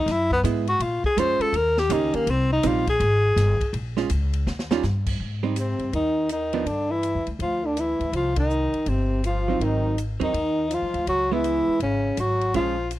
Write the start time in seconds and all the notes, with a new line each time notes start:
Already playing: D#4
0.06 F#2, snare, ride
0.11 E4
0.31 B3, kick
0.44 G#2 G#3 B3 E4, hi-hat pedal, ride
0.67 F#4, ride
0.79 A#2 F4, ride
1.04 G#4, muted upright bass stroke, kick
1.17 F2 G#3 C#4 F4 C5, hi-hat pedal, ride
1.39 A4, muted upright bass stroke, ride
1.53 D#2 A#4, ride
1.77 G4, snare
1.90 C#2 D#3 A#3 C#4 D#4 G4, hi-hat pedal, ride
2.14 A#3, muted upright bass stroke, ride
2.27 C2 C4, ride
2.52 D#4
2.63 A#1 G3 C4 D#4 F4, hi-hat pedal, ride
2.87 G#4, kick, ride
3.00 G#1, ride
3.36 G1, snare, hi-hat pedal, ride
3.60 muted upright bass stroke, kick, ride
3.73 A#1, ride
3.97 G#3 C#4 F4, snare
4.10 C#2, hi-hat pedal, ride
4.33 ride
4.47 D#2, snare
4.59 snare
4.71 D#3 G3 C#4 F4, snare
4.83 G2, snare, hi-hat pedal
5.06 kick, crash
5.20 G#2
5.43 G3 C4 D#4
5.56 C3 C4, hi-hat pedal, ride
5.79 G2, ride
5.93 D#2 D#3 D#4, ride
6.29 D#3 D#4, hi-hat pedal, ride
6.53 F3 B3 D4, ride
6.66 G2 D3 D4, ride
6.91 E3 E4
7.03 hi-hat pedal, ride
7.15 F2
7.27 D2, ride
7.39 D2 F3 F4, ride
7.64 D3 D4
7.77 E3 E4, hi-hat pedal, ride
8.00 D2, ride
8.12 C2 F3 F4, ride
8.36 D#3 D#4, kick, ride
8.50 hi-hat pedal
8.74 muted upright bass stroke, ride
8.86 G1 C3 C4, ride
9.24 F3 F4, hi-hat pedal, ride
9.48 F#3 C4 D#4
9.60 G#1 D#3 D#4, ride
9.98 hi-hat pedal, ride
10.20 D#2 D#3 F#3 C4 D#4, ride
10.33 D#2, ride
10.70 F3 F4, hi-hat pedal, ride
10.82 F#2
10.94 D2, ride
11.07 C#2 F#3 F#4, ride
11.32 E3 G#3 B3 E4
11.44 hi-hat pedal, ride
11.67 muted upright bass stroke
11.80 G#1 C#3 C#4, ride
12.17 G#1 F#3 F#4, hi-hat pedal, ride
12.41 ride
12.54 A#1 F3 G#3 C#4 F4, ride
12.91 hi-hat pedal, ride